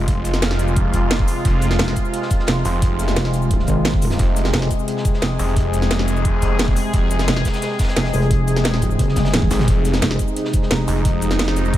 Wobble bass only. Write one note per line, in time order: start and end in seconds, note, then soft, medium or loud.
1.79 1.95 F1 loud
2.48 2.64 F1 loud
3.16 3.67 F1 loud
3.68 4.18 G#1 loud
4.54 4.69 F1 loud
5.22 5.38 F1 medium
7.28 7.44 F1 loud
7.96 8.12 F1 loud
8.14 8.98 F1 loud
8.99 9.49 F#1 loud
10.02 10.18 F1 medium
10.71 10.87 F1 medium